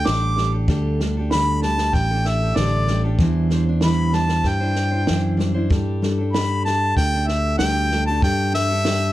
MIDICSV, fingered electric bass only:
0, 0, Header, 1, 2, 480
1, 0, Start_track
1, 0, Tempo, 628272
1, 524, Time_signature, 4, 2, 24, 8
1, 6972, End_track
2, 0, Start_track
2, 0, Title_t, "Fingered electric bass"
2, 0, Program_c, 0, 33
2, 59, Note_on_c, 0, 33, 83
2, 508, Note_off_c, 0, 33, 0
2, 522, Note_on_c, 0, 38, 82
2, 1452, Note_off_c, 0, 38, 0
2, 1481, Note_on_c, 0, 33, 91
2, 1938, Note_off_c, 0, 33, 0
2, 1962, Note_on_c, 0, 33, 84
2, 2419, Note_off_c, 0, 33, 0
2, 2441, Note_on_c, 0, 40, 84
2, 3372, Note_off_c, 0, 40, 0
2, 3398, Note_on_c, 0, 43, 90
2, 3857, Note_off_c, 0, 43, 0
2, 3895, Note_on_c, 0, 42, 76
2, 4346, Note_off_c, 0, 42, 0
2, 4362, Note_on_c, 0, 43, 77
2, 5292, Note_off_c, 0, 43, 0
2, 5328, Note_on_c, 0, 38, 87
2, 5782, Note_off_c, 0, 38, 0
2, 5810, Note_on_c, 0, 38, 87
2, 6263, Note_off_c, 0, 38, 0
2, 6289, Note_on_c, 0, 43, 84
2, 6972, Note_off_c, 0, 43, 0
2, 6972, End_track
0, 0, End_of_file